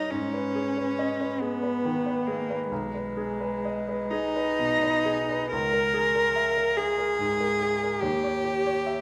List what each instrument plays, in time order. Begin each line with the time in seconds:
Already playing: grand piano G3 A#4 C#5 D#5, cello D#4
0.10 grand piano G#2, cello C#4
0.34 grand piano B4
0.55 grand piano G#4
0.77 grand piano B4
0.99 grand piano D#5
1.20 grand piano B4
1.40 cello B3, grand piano G#4
1.63 grand piano B4
1.85 grand piano D#3
2.06 grand piano B4
2.27 cello A#3, grand piano G#4
2.50 grand piano B4
2.70 grand piano B1, cello G#3
2.95 grand piano B4
3.17 grand piano G#4
3.40 grand piano B4
3.65 grand piano D#5
3.88 grand piano B4
4.11 cello D#4, grand piano G#4
4.36 grand piano B4
4.59 grand piano B2
4.83 grand piano B4
5.05 grand piano G#4
5.29 grand piano B4
5.51 grand piano C#2, cello A#4
5.73 grand piano A#4
5.94 grand piano G#4
6.15 grand piano A#4
6.36 grand piano E5
6.57 grand piano A#4
6.76 cello G#4, grand piano G#4
6.98 grand piano A#4
7.19 grand piano G#2
7.40 grand piano A#4
7.60 grand piano G#4
7.83 grand piano A#4
8.00 grand piano D#2, cello G4
8.24 grand piano C#5
8.44 grand piano G4
8.66 grand piano C#5
8.86 grand piano E5